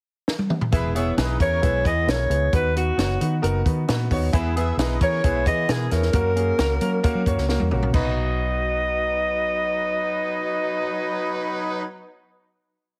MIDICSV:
0, 0, Header, 1, 6, 480
1, 0, Start_track
1, 0, Key_signature, 5, "major"
1, 0, Tempo, 449775
1, 778, Time_signature, 4, 2, 24, 8
1, 13873, End_track
2, 0, Start_track
2, 0, Title_t, "Alto saxophone"
2, 0, Program_c, 0, 65
2, 1509, Note_on_c, 0, 73, 94
2, 1993, Note_on_c, 0, 75, 103
2, 2009, Note_off_c, 0, 73, 0
2, 2242, Note_on_c, 0, 73, 89
2, 2258, Note_off_c, 0, 75, 0
2, 2713, Note_off_c, 0, 73, 0
2, 2722, Note_on_c, 0, 71, 86
2, 2937, Note_off_c, 0, 71, 0
2, 2959, Note_on_c, 0, 66, 76
2, 3631, Note_off_c, 0, 66, 0
2, 5375, Note_on_c, 0, 73, 101
2, 5811, Note_off_c, 0, 73, 0
2, 5843, Note_on_c, 0, 75, 107
2, 6098, Note_on_c, 0, 68, 89
2, 6114, Note_off_c, 0, 75, 0
2, 6318, Note_on_c, 0, 70, 98
2, 6334, Note_off_c, 0, 68, 0
2, 7996, Note_off_c, 0, 70, 0
2, 8483, Note_on_c, 0, 75, 82
2, 12645, Note_off_c, 0, 75, 0
2, 13873, End_track
3, 0, Start_track
3, 0, Title_t, "Grand piano"
3, 0, Program_c, 1, 0
3, 768, Note_on_c, 1, 59, 95
3, 773, Note_on_c, 1, 64, 83
3, 773, Note_on_c, 1, 68, 86
3, 776, Note_on_c, 1, 71, 99
3, 946, Note_off_c, 1, 59, 0
3, 948, Note_off_c, 1, 64, 0
3, 948, Note_off_c, 1, 68, 0
3, 949, Note_off_c, 1, 71, 0
3, 1010, Note_on_c, 1, 59, 81
3, 1014, Note_on_c, 1, 64, 77
3, 1015, Note_on_c, 1, 68, 74
3, 1017, Note_on_c, 1, 73, 93
3, 1187, Note_off_c, 1, 59, 0
3, 1189, Note_off_c, 1, 64, 0
3, 1189, Note_off_c, 1, 68, 0
3, 1191, Note_off_c, 1, 73, 0
3, 1254, Note_on_c, 1, 59, 82
3, 1257, Note_on_c, 1, 64, 81
3, 1262, Note_on_c, 1, 68, 83
3, 1262, Note_on_c, 1, 71, 86
3, 1429, Note_off_c, 1, 59, 0
3, 1431, Note_off_c, 1, 64, 0
3, 1433, Note_off_c, 1, 68, 0
3, 1433, Note_off_c, 1, 71, 0
3, 1491, Note_on_c, 1, 59, 67
3, 1497, Note_on_c, 1, 64, 60
3, 1501, Note_on_c, 1, 68, 59
3, 1505, Note_on_c, 1, 71, 79
3, 1668, Note_off_c, 1, 59, 0
3, 1671, Note_off_c, 1, 64, 0
3, 1673, Note_off_c, 1, 68, 0
3, 1675, Note_off_c, 1, 71, 0
3, 1727, Note_on_c, 1, 59, 85
3, 1730, Note_on_c, 1, 64, 78
3, 1733, Note_on_c, 1, 68, 74
3, 1735, Note_on_c, 1, 71, 84
3, 1907, Note_off_c, 1, 59, 0
3, 1908, Note_off_c, 1, 64, 0
3, 1909, Note_off_c, 1, 68, 0
3, 1911, Note_off_c, 1, 71, 0
3, 1966, Note_on_c, 1, 59, 62
3, 1971, Note_on_c, 1, 64, 56
3, 1972, Note_on_c, 1, 68, 60
3, 1975, Note_on_c, 1, 71, 76
3, 2146, Note_off_c, 1, 59, 0
3, 2149, Note_off_c, 1, 64, 0
3, 2149, Note_off_c, 1, 68, 0
3, 2151, Note_off_c, 1, 71, 0
3, 2205, Note_on_c, 1, 59, 67
3, 2209, Note_on_c, 1, 64, 62
3, 2213, Note_on_c, 1, 68, 56
3, 2214, Note_on_c, 1, 70, 67
3, 2386, Note_off_c, 1, 59, 0
3, 2388, Note_off_c, 1, 64, 0
3, 2390, Note_off_c, 1, 68, 0
3, 2391, Note_off_c, 1, 70, 0
3, 2446, Note_on_c, 1, 59, 65
3, 2447, Note_on_c, 1, 64, 60
3, 2450, Note_on_c, 1, 68, 65
3, 2453, Note_on_c, 1, 71, 71
3, 2627, Note_off_c, 1, 59, 0
3, 2627, Note_off_c, 1, 64, 0
3, 2629, Note_off_c, 1, 68, 0
3, 2630, Note_off_c, 1, 71, 0
3, 2694, Note_on_c, 1, 59, 81
3, 2695, Note_on_c, 1, 63, 79
3, 2698, Note_on_c, 1, 66, 78
3, 2705, Note_on_c, 1, 71, 102
3, 2871, Note_off_c, 1, 59, 0
3, 2872, Note_off_c, 1, 63, 0
3, 2873, Note_off_c, 1, 66, 0
3, 2877, Note_off_c, 1, 71, 0
3, 2939, Note_on_c, 1, 59, 63
3, 2941, Note_on_c, 1, 66, 59
3, 2942, Note_on_c, 1, 63, 63
3, 2947, Note_on_c, 1, 71, 73
3, 3114, Note_off_c, 1, 59, 0
3, 3115, Note_off_c, 1, 66, 0
3, 3116, Note_off_c, 1, 63, 0
3, 3118, Note_off_c, 1, 71, 0
3, 3169, Note_on_c, 1, 59, 75
3, 3171, Note_on_c, 1, 63, 61
3, 3177, Note_on_c, 1, 66, 64
3, 3182, Note_on_c, 1, 73, 74
3, 3350, Note_off_c, 1, 59, 0
3, 3351, Note_off_c, 1, 63, 0
3, 3354, Note_off_c, 1, 66, 0
3, 3356, Note_off_c, 1, 73, 0
3, 3420, Note_on_c, 1, 59, 63
3, 3420, Note_on_c, 1, 63, 65
3, 3423, Note_on_c, 1, 66, 62
3, 3425, Note_on_c, 1, 71, 70
3, 3595, Note_off_c, 1, 59, 0
3, 3596, Note_off_c, 1, 63, 0
3, 3597, Note_off_c, 1, 66, 0
3, 3598, Note_off_c, 1, 71, 0
3, 3648, Note_on_c, 1, 59, 95
3, 3653, Note_on_c, 1, 63, 90
3, 3656, Note_on_c, 1, 66, 89
3, 3659, Note_on_c, 1, 70, 112
3, 3830, Note_off_c, 1, 59, 0
3, 3833, Note_off_c, 1, 63, 0
3, 3834, Note_off_c, 1, 66, 0
3, 3836, Note_off_c, 1, 70, 0
3, 3892, Note_on_c, 1, 59, 82
3, 3895, Note_on_c, 1, 63, 73
3, 3898, Note_on_c, 1, 66, 70
3, 3900, Note_on_c, 1, 71, 83
3, 4073, Note_off_c, 1, 59, 0
3, 4074, Note_off_c, 1, 63, 0
3, 4075, Note_off_c, 1, 66, 0
3, 4076, Note_off_c, 1, 71, 0
3, 4137, Note_on_c, 1, 59, 80
3, 4140, Note_on_c, 1, 63, 67
3, 4143, Note_on_c, 1, 66, 75
3, 4150, Note_on_c, 1, 71, 99
3, 4315, Note_off_c, 1, 59, 0
3, 4317, Note_off_c, 1, 63, 0
3, 4318, Note_off_c, 1, 66, 0
3, 4322, Note_off_c, 1, 71, 0
3, 4383, Note_on_c, 1, 59, 88
3, 4387, Note_on_c, 1, 63, 74
3, 4391, Note_on_c, 1, 66, 82
3, 4394, Note_on_c, 1, 73, 95
3, 4559, Note_off_c, 1, 59, 0
3, 4561, Note_off_c, 1, 63, 0
3, 4563, Note_off_c, 1, 66, 0
3, 4565, Note_off_c, 1, 73, 0
3, 4619, Note_on_c, 1, 64, 98
3, 4621, Note_on_c, 1, 59, 107
3, 4623, Note_on_c, 1, 68, 95
3, 4630, Note_on_c, 1, 71, 113
3, 4797, Note_off_c, 1, 64, 0
3, 4798, Note_off_c, 1, 59, 0
3, 4799, Note_off_c, 1, 68, 0
3, 4803, Note_off_c, 1, 71, 0
3, 4865, Note_on_c, 1, 59, 85
3, 4869, Note_on_c, 1, 64, 72
3, 4870, Note_on_c, 1, 68, 84
3, 4873, Note_on_c, 1, 71, 97
3, 5040, Note_off_c, 1, 59, 0
3, 5042, Note_off_c, 1, 64, 0
3, 5043, Note_off_c, 1, 68, 0
3, 5044, Note_off_c, 1, 71, 0
3, 5108, Note_on_c, 1, 59, 89
3, 5111, Note_on_c, 1, 64, 87
3, 5113, Note_on_c, 1, 68, 79
3, 5114, Note_on_c, 1, 71, 98
3, 5282, Note_off_c, 1, 59, 0
3, 5284, Note_off_c, 1, 64, 0
3, 5285, Note_off_c, 1, 68, 0
3, 5285, Note_off_c, 1, 71, 0
3, 5354, Note_on_c, 1, 59, 61
3, 5356, Note_on_c, 1, 64, 59
3, 5359, Note_on_c, 1, 68, 69
3, 5363, Note_on_c, 1, 71, 80
3, 5525, Note_off_c, 1, 59, 0
3, 5527, Note_off_c, 1, 64, 0
3, 5528, Note_off_c, 1, 68, 0
3, 5530, Note_off_c, 1, 71, 0
3, 5588, Note_on_c, 1, 59, 85
3, 5591, Note_on_c, 1, 64, 80
3, 5593, Note_on_c, 1, 68, 81
3, 5596, Note_on_c, 1, 71, 91
3, 5763, Note_off_c, 1, 59, 0
3, 5764, Note_off_c, 1, 64, 0
3, 5765, Note_off_c, 1, 68, 0
3, 5767, Note_off_c, 1, 71, 0
3, 5827, Note_on_c, 1, 59, 72
3, 5834, Note_on_c, 1, 68, 64
3, 5835, Note_on_c, 1, 64, 69
3, 5842, Note_on_c, 1, 71, 73
3, 6003, Note_off_c, 1, 59, 0
3, 6006, Note_off_c, 1, 68, 0
3, 6007, Note_off_c, 1, 64, 0
3, 6010, Note_off_c, 1, 71, 0
3, 6069, Note_on_c, 1, 59, 66
3, 6074, Note_on_c, 1, 68, 70
3, 6075, Note_on_c, 1, 64, 63
3, 6081, Note_on_c, 1, 70, 80
3, 6244, Note_off_c, 1, 59, 0
3, 6246, Note_off_c, 1, 68, 0
3, 6247, Note_off_c, 1, 64, 0
3, 6250, Note_off_c, 1, 70, 0
3, 6310, Note_on_c, 1, 59, 71
3, 6311, Note_on_c, 1, 64, 60
3, 6316, Note_on_c, 1, 68, 68
3, 6317, Note_on_c, 1, 73, 73
3, 6485, Note_off_c, 1, 59, 0
3, 6485, Note_off_c, 1, 64, 0
3, 6487, Note_off_c, 1, 68, 0
3, 6488, Note_off_c, 1, 73, 0
3, 6540, Note_on_c, 1, 58, 83
3, 6545, Note_on_c, 1, 61, 76
3, 6546, Note_on_c, 1, 66, 86
3, 6553, Note_on_c, 1, 70, 108
3, 6720, Note_off_c, 1, 58, 0
3, 6722, Note_off_c, 1, 61, 0
3, 6723, Note_off_c, 1, 66, 0
3, 6726, Note_off_c, 1, 70, 0
3, 6782, Note_on_c, 1, 58, 70
3, 6783, Note_on_c, 1, 61, 67
3, 6789, Note_on_c, 1, 66, 68
3, 6789, Note_on_c, 1, 68, 86
3, 6960, Note_off_c, 1, 58, 0
3, 6961, Note_off_c, 1, 61, 0
3, 6964, Note_off_c, 1, 66, 0
3, 6964, Note_off_c, 1, 68, 0
3, 7022, Note_on_c, 1, 58, 82
3, 7024, Note_on_c, 1, 61, 73
3, 7028, Note_on_c, 1, 66, 77
3, 7035, Note_on_c, 1, 70, 101
3, 7201, Note_off_c, 1, 58, 0
3, 7202, Note_off_c, 1, 61, 0
3, 7204, Note_off_c, 1, 66, 0
3, 7207, Note_off_c, 1, 70, 0
3, 7266, Note_on_c, 1, 61, 75
3, 7267, Note_on_c, 1, 58, 77
3, 7268, Note_on_c, 1, 66, 67
3, 7274, Note_on_c, 1, 70, 84
3, 7443, Note_off_c, 1, 58, 0
3, 7443, Note_off_c, 1, 61, 0
3, 7444, Note_off_c, 1, 66, 0
3, 7447, Note_off_c, 1, 70, 0
3, 7504, Note_on_c, 1, 61, 96
3, 7508, Note_on_c, 1, 58, 110
3, 7509, Note_on_c, 1, 66, 97
3, 7513, Note_on_c, 1, 70, 118
3, 7682, Note_off_c, 1, 61, 0
3, 7684, Note_off_c, 1, 58, 0
3, 7684, Note_off_c, 1, 66, 0
3, 7686, Note_off_c, 1, 70, 0
3, 7749, Note_on_c, 1, 58, 82
3, 7750, Note_on_c, 1, 61, 73
3, 7757, Note_on_c, 1, 66, 81
3, 7761, Note_on_c, 1, 73, 96
3, 7924, Note_off_c, 1, 58, 0
3, 7924, Note_off_c, 1, 61, 0
3, 7928, Note_off_c, 1, 66, 0
3, 7930, Note_off_c, 1, 73, 0
3, 7992, Note_on_c, 1, 66, 74
3, 7993, Note_on_c, 1, 58, 83
3, 7995, Note_on_c, 1, 61, 78
3, 8001, Note_on_c, 1, 70, 94
3, 8165, Note_off_c, 1, 66, 0
3, 8166, Note_off_c, 1, 58, 0
3, 8167, Note_off_c, 1, 61, 0
3, 8170, Note_off_c, 1, 70, 0
3, 8233, Note_on_c, 1, 58, 78
3, 8234, Note_on_c, 1, 61, 80
3, 8239, Note_on_c, 1, 66, 78
3, 8242, Note_on_c, 1, 70, 87
3, 8405, Note_off_c, 1, 58, 0
3, 8406, Note_off_c, 1, 61, 0
3, 8409, Note_off_c, 1, 66, 0
3, 8410, Note_off_c, 1, 70, 0
3, 8448, Note_on_c, 1, 59, 70
3, 8462, Note_on_c, 1, 63, 69
3, 8476, Note_on_c, 1, 66, 70
3, 8488, Note_on_c, 1, 71, 86
3, 12609, Note_off_c, 1, 59, 0
3, 12624, Note_off_c, 1, 63, 0
3, 12638, Note_off_c, 1, 66, 0
3, 12649, Note_off_c, 1, 71, 0
3, 13873, End_track
4, 0, Start_track
4, 0, Title_t, "Horn section"
4, 0, Program_c, 2, 61
4, 769, Note_on_c, 2, 71, 114
4, 771, Note_on_c, 2, 56, 92
4, 771, Note_on_c, 2, 64, 90
4, 965, Note_off_c, 2, 71, 0
4, 966, Note_off_c, 2, 56, 0
4, 966, Note_off_c, 2, 64, 0
4, 1010, Note_on_c, 2, 76, 95
4, 1011, Note_on_c, 2, 59, 89
4, 1014, Note_on_c, 2, 68, 82
4, 1206, Note_off_c, 2, 59, 0
4, 1206, Note_off_c, 2, 76, 0
4, 1208, Note_off_c, 2, 68, 0
4, 1244, Note_on_c, 2, 71, 82
4, 1248, Note_on_c, 2, 75, 90
4, 1249, Note_on_c, 2, 63, 81
4, 1443, Note_off_c, 2, 71, 0
4, 1445, Note_off_c, 2, 63, 0
4, 1445, Note_off_c, 2, 75, 0
4, 1485, Note_on_c, 2, 73, 105
4, 1490, Note_on_c, 2, 61, 100
4, 1490, Note_on_c, 2, 70, 95
4, 1683, Note_off_c, 2, 73, 0
4, 1686, Note_off_c, 2, 61, 0
4, 1686, Note_off_c, 2, 70, 0
4, 1730, Note_on_c, 2, 64, 91
4, 1731, Note_on_c, 2, 56, 86
4, 1731, Note_on_c, 2, 71, 92
4, 1926, Note_off_c, 2, 64, 0
4, 1927, Note_off_c, 2, 56, 0
4, 1927, Note_off_c, 2, 71, 0
4, 1964, Note_on_c, 2, 59, 80
4, 1969, Note_on_c, 2, 52, 85
4, 1969, Note_on_c, 2, 68, 90
4, 2424, Note_off_c, 2, 59, 0
4, 2427, Note_off_c, 2, 52, 0
4, 2427, Note_off_c, 2, 68, 0
4, 4618, Note_on_c, 2, 56, 103
4, 4619, Note_on_c, 2, 71, 109
4, 4621, Note_on_c, 2, 64, 88
4, 4815, Note_off_c, 2, 56, 0
4, 4816, Note_off_c, 2, 71, 0
4, 4817, Note_off_c, 2, 64, 0
4, 4859, Note_on_c, 2, 68, 94
4, 4861, Note_on_c, 2, 76, 104
4, 4862, Note_on_c, 2, 59, 81
4, 5056, Note_off_c, 2, 68, 0
4, 5057, Note_off_c, 2, 76, 0
4, 5058, Note_off_c, 2, 59, 0
4, 5094, Note_on_c, 2, 63, 85
4, 5096, Note_on_c, 2, 71, 90
4, 5100, Note_on_c, 2, 75, 97
4, 5293, Note_off_c, 2, 63, 0
4, 5295, Note_off_c, 2, 71, 0
4, 5297, Note_off_c, 2, 75, 0
4, 5344, Note_on_c, 2, 73, 119
4, 5345, Note_on_c, 2, 70, 111
4, 5346, Note_on_c, 2, 61, 102
4, 5540, Note_off_c, 2, 61, 0
4, 5540, Note_off_c, 2, 70, 0
4, 5540, Note_off_c, 2, 73, 0
4, 5583, Note_on_c, 2, 64, 93
4, 5585, Note_on_c, 2, 56, 91
4, 5589, Note_on_c, 2, 71, 97
4, 5779, Note_off_c, 2, 64, 0
4, 5780, Note_off_c, 2, 56, 0
4, 5783, Note_off_c, 2, 71, 0
4, 5815, Note_on_c, 2, 52, 93
4, 5816, Note_on_c, 2, 59, 83
4, 5820, Note_on_c, 2, 68, 91
4, 6275, Note_off_c, 2, 52, 0
4, 6276, Note_off_c, 2, 59, 0
4, 6278, Note_off_c, 2, 68, 0
4, 8467, Note_on_c, 2, 71, 96
4, 8470, Note_on_c, 2, 63, 78
4, 8474, Note_on_c, 2, 54, 83
4, 12629, Note_off_c, 2, 71, 0
4, 12632, Note_off_c, 2, 63, 0
4, 12635, Note_off_c, 2, 54, 0
4, 13873, End_track
5, 0, Start_track
5, 0, Title_t, "Fingered electric bass"
5, 0, Program_c, 3, 33
5, 775, Note_on_c, 3, 28, 88
5, 1171, Note_off_c, 3, 28, 0
5, 1253, Note_on_c, 3, 35, 83
5, 1453, Note_off_c, 3, 35, 0
5, 1496, Note_on_c, 3, 40, 91
5, 1695, Note_off_c, 3, 40, 0
5, 1736, Note_on_c, 3, 35, 87
5, 1935, Note_off_c, 3, 35, 0
5, 1975, Note_on_c, 3, 40, 93
5, 2175, Note_off_c, 3, 40, 0
5, 2209, Note_on_c, 3, 35, 86
5, 2412, Note_off_c, 3, 35, 0
5, 2453, Note_on_c, 3, 37, 92
5, 2654, Note_off_c, 3, 37, 0
5, 2698, Note_on_c, 3, 39, 88
5, 3095, Note_off_c, 3, 39, 0
5, 3173, Note_on_c, 3, 30, 77
5, 3375, Note_off_c, 3, 30, 0
5, 3427, Note_on_c, 3, 51, 97
5, 3624, Note_off_c, 3, 51, 0
5, 3662, Note_on_c, 3, 30, 95
5, 3861, Note_off_c, 3, 30, 0
5, 3904, Note_on_c, 3, 51, 94
5, 4103, Note_off_c, 3, 51, 0
5, 4148, Note_on_c, 3, 46, 87
5, 4345, Note_off_c, 3, 46, 0
5, 4381, Note_on_c, 3, 39, 88
5, 4582, Note_off_c, 3, 39, 0
5, 4626, Note_on_c, 3, 40, 94
5, 5022, Note_off_c, 3, 40, 0
5, 5090, Note_on_c, 3, 35, 87
5, 5296, Note_off_c, 3, 35, 0
5, 5341, Note_on_c, 3, 52, 92
5, 5543, Note_off_c, 3, 52, 0
5, 5592, Note_on_c, 3, 35, 85
5, 5825, Note_on_c, 3, 52, 98
5, 5841, Note_off_c, 3, 35, 0
5, 6026, Note_off_c, 3, 52, 0
5, 6069, Note_on_c, 3, 47, 88
5, 6268, Note_off_c, 3, 47, 0
5, 6310, Note_on_c, 3, 40, 81
5, 6509, Note_off_c, 3, 40, 0
5, 6547, Note_on_c, 3, 42, 100
5, 6944, Note_off_c, 3, 42, 0
5, 7028, Note_on_c, 3, 37, 82
5, 7228, Note_off_c, 3, 37, 0
5, 7269, Note_on_c, 3, 54, 106
5, 7468, Note_off_c, 3, 54, 0
5, 7629, Note_on_c, 3, 54, 95
5, 7729, Note_off_c, 3, 54, 0
5, 7750, Note_on_c, 3, 42, 96
5, 7850, Note_off_c, 3, 42, 0
5, 7872, Note_on_c, 3, 37, 99
5, 8070, Note_off_c, 3, 37, 0
5, 8122, Note_on_c, 3, 40, 75
5, 8217, Note_off_c, 3, 40, 0
5, 8240, Note_on_c, 3, 34, 86
5, 8434, Note_off_c, 3, 34, 0
5, 8471, Note_on_c, 3, 35, 84
5, 12632, Note_off_c, 3, 35, 0
5, 13873, End_track
6, 0, Start_track
6, 0, Title_t, "Drums"
6, 297, Note_on_c, 9, 38, 68
6, 404, Note_off_c, 9, 38, 0
6, 414, Note_on_c, 9, 48, 66
6, 521, Note_off_c, 9, 48, 0
6, 535, Note_on_c, 9, 47, 83
6, 641, Note_off_c, 9, 47, 0
6, 655, Note_on_c, 9, 43, 96
6, 762, Note_off_c, 9, 43, 0
6, 771, Note_on_c, 9, 42, 75
6, 775, Note_on_c, 9, 36, 91
6, 878, Note_off_c, 9, 42, 0
6, 882, Note_off_c, 9, 36, 0
6, 1021, Note_on_c, 9, 42, 66
6, 1127, Note_off_c, 9, 42, 0
6, 1257, Note_on_c, 9, 42, 90
6, 1261, Note_on_c, 9, 38, 103
6, 1363, Note_off_c, 9, 42, 0
6, 1368, Note_off_c, 9, 38, 0
6, 1496, Note_on_c, 9, 36, 87
6, 1497, Note_on_c, 9, 42, 75
6, 1602, Note_off_c, 9, 36, 0
6, 1604, Note_off_c, 9, 42, 0
6, 1740, Note_on_c, 9, 42, 75
6, 1742, Note_on_c, 9, 36, 95
6, 1846, Note_off_c, 9, 42, 0
6, 1848, Note_off_c, 9, 36, 0
6, 1977, Note_on_c, 9, 36, 82
6, 1984, Note_on_c, 9, 42, 63
6, 2083, Note_off_c, 9, 36, 0
6, 2091, Note_off_c, 9, 42, 0
6, 2223, Note_on_c, 9, 42, 75
6, 2228, Note_on_c, 9, 38, 111
6, 2330, Note_off_c, 9, 42, 0
6, 2335, Note_off_c, 9, 38, 0
6, 2462, Note_on_c, 9, 42, 72
6, 2569, Note_off_c, 9, 42, 0
6, 2700, Note_on_c, 9, 36, 99
6, 2700, Note_on_c, 9, 42, 77
6, 2807, Note_off_c, 9, 36, 0
6, 2807, Note_off_c, 9, 42, 0
6, 2950, Note_on_c, 9, 42, 72
6, 3057, Note_off_c, 9, 42, 0
6, 3187, Note_on_c, 9, 42, 94
6, 3191, Note_on_c, 9, 38, 99
6, 3293, Note_off_c, 9, 42, 0
6, 3298, Note_off_c, 9, 38, 0
6, 3426, Note_on_c, 9, 42, 80
6, 3533, Note_off_c, 9, 42, 0
6, 3670, Note_on_c, 9, 42, 93
6, 3777, Note_off_c, 9, 42, 0
6, 3904, Note_on_c, 9, 36, 78
6, 3909, Note_on_c, 9, 42, 64
6, 4011, Note_off_c, 9, 36, 0
6, 4016, Note_off_c, 9, 42, 0
6, 4145, Note_on_c, 9, 42, 74
6, 4150, Note_on_c, 9, 38, 123
6, 4252, Note_off_c, 9, 42, 0
6, 4257, Note_off_c, 9, 38, 0
6, 4385, Note_on_c, 9, 36, 79
6, 4386, Note_on_c, 9, 46, 54
6, 4492, Note_off_c, 9, 36, 0
6, 4493, Note_off_c, 9, 46, 0
6, 4625, Note_on_c, 9, 42, 80
6, 4626, Note_on_c, 9, 36, 109
6, 4732, Note_off_c, 9, 36, 0
6, 4732, Note_off_c, 9, 42, 0
6, 4874, Note_on_c, 9, 42, 73
6, 4981, Note_off_c, 9, 42, 0
6, 5110, Note_on_c, 9, 42, 98
6, 5115, Note_on_c, 9, 38, 111
6, 5217, Note_off_c, 9, 42, 0
6, 5222, Note_off_c, 9, 38, 0
6, 5346, Note_on_c, 9, 36, 93
6, 5346, Note_on_c, 9, 42, 82
6, 5452, Note_off_c, 9, 42, 0
6, 5453, Note_off_c, 9, 36, 0
6, 5590, Note_on_c, 9, 42, 89
6, 5593, Note_on_c, 9, 36, 101
6, 5697, Note_off_c, 9, 42, 0
6, 5699, Note_off_c, 9, 36, 0
6, 5828, Note_on_c, 9, 36, 94
6, 5834, Note_on_c, 9, 42, 69
6, 5935, Note_off_c, 9, 36, 0
6, 5940, Note_off_c, 9, 42, 0
6, 6069, Note_on_c, 9, 42, 76
6, 6074, Note_on_c, 9, 38, 119
6, 6175, Note_off_c, 9, 42, 0
6, 6181, Note_off_c, 9, 38, 0
6, 6310, Note_on_c, 9, 42, 76
6, 6315, Note_on_c, 9, 38, 31
6, 6416, Note_off_c, 9, 42, 0
6, 6422, Note_off_c, 9, 38, 0
6, 6428, Note_on_c, 9, 38, 38
6, 6535, Note_off_c, 9, 38, 0
6, 6543, Note_on_c, 9, 42, 90
6, 6548, Note_on_c, 9, 36, 104
6, 6650, Note_off_c, 9, 42, 0
6, 6655, Note_off_c, 9, 36, 0
6, 6793, Note_on_c, 9, 42, 72
6, 6900, Note_off_c, 9, 42, 0
6, 7028, Note_on_c, 9, 42, 84
6, 7033, Note_on_c, 9, 38, 103
6, 7135, Note_off_c, 9, 42, 0
6, 7140, Note_off_c, 9, 38, 0
6, 7267, Note_on_c, 9, 42, 82
6, 7373, Note_off_c, 9, 42, 0
6, 7511, Note_on_c, 9, 42, 83
6, 7515, Note_on_c, 9, 36, 103
6, 7618, Note_off_c, 9, 42, 0
6, 7621, Note_off_c, 9, 36, 0
6, 7751, Note_on_c, 9, 36, 85
6, 7756, Note_on_c, 9, 42, 65
6, 7858, Note_off_c, 9, 36, 0
6, 7863, Note_off_c, 9, 42, 0
6, 7877, Note_on_c, 9, 38, 32
6, 7983, Note_off_c, 9, 38, 0
6, 7992, Note_on_c, 9, 38, 60
6, 8098, Note_off_c, 9, 38, 0
6, 8107, Note_on_c, 9, 48, 60
6, 8214, Note_off_c, 9, 48, 0
6, 8231, Note_on_c, 9, 45, 78
6, 8338, Note_off_c, 9, 45, 0
6, 8352, Note_on_c, 9, 43, 99
6, 8459, Note_off_c, 9, 43, 0
6, 8471, Note_on_c, 9, 49, 71
6, 8473, Note_on_c, 9, 36, 98
6, 8577, Note_off_c, 9, 49, 0
6, 8580, Note_off_c, 9, 36, 0
6, 13873, End_track
0, 0, End_of_file